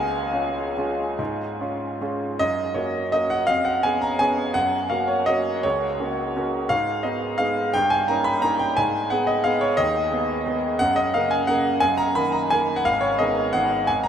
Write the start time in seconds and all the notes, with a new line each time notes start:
Already playing: C#2 G#5
0.33 C#4 F4
0.77 G#3 C#4 F4
1.19 G#2
1.61 C#4 F4
2.01 G#3 C#4 F4
2.39 F#2 D#5
2.74 A#3 C#4 F#4 C#5
3.12 A#3 C#4 F#4 D#5
3.30 F#5
3.47 F2 F5
3.65 F#5
3.83 B3 C#4 G#4 G#5
4.02 A#5
4.19 B3 C#4 G#4 G#5
4.54 F#2 F#5
4.90 A#3 C#4 F#4 F5
5.08 C#5
5.26 A#3 C#4 F#4 D#5
5.63 C#2 C#5
6.00 A#3 C#4 F#4
6.36 A#3 C#4 F#4
6.69 G#2 F5
7.03 G#3 B3 D#4 D#5
7.38 G#3 B3 D#4 F5
7.74 G2 G5
7.90 G#5
8.08 A#3 C#4 D#4 A#5
8.24 B5
8.42 A#3 C#4 D#4 A#5
8.59 G5
8.77 G#2 G#5
9.10 G#3 B3 G#4 F#5
9.27 D#5
9.44 G#3 B3 G#4 F5
9.61 C#5
9.77 D#2 D#5
10.12 G#3 B3 G#4
10.46 G#3 B3 G#4
10.79 F#2 F#5
10.96 D#5
11.14 C#3 A#3 A#4 F5
11.31 G#5
11.47 C#3 A#3 A#4 F#5
11.80 F#2 G#5
11.98 A#5
12.15 D#3 A#3 A#4 B5
12.32 A#5
12.50 D#3 A#3 A#4 G#5
12.76 F#5
12.85 G#1 F5
13.01 C#5
13.19 D#3 B3 G#4 D#5
13.53 D#3 B3 G#4 F#5
13.87 G#1 G#5
14.03 A#5